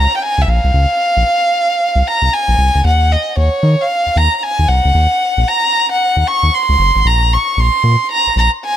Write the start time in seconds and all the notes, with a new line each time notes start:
Already playing: A#5
0.17 G5
0.23 G#5
0.38 C#2
0.42 E5
0.47 A#1 F5
0.64 C2
0.74 C#2
1.17 A#1
1.96 C2
2.08 A#5
2.22 C2
2.34 G#5
2.48 A#1
2.58 C2
2.75 C#2
2.84 D#2 F#5
3.12 D#5
3.37 D#2 C#5
3.63 D#3
3.81 F5
4.06 D#2
4.16 D#2 A#5
4.38 A#5
4.43 G#5
4.59 D#2
4.68 C2 F#5
4.85 C#2
4.95 D#2
5.37 A#1
5.48 A#5
5.92 F#5
6.17 D#2
6.28 C#6
6.43 D#2
6.54 C6
6.69 C#2
6.79 F#1
6.96 G#1
7.05 A#1 A#5
7.33 C#6
7.57 A#1 C6
7.84 A#2
8.12 A#5
8.27 A#1
8.36 A#1 A#5
8.65 G#5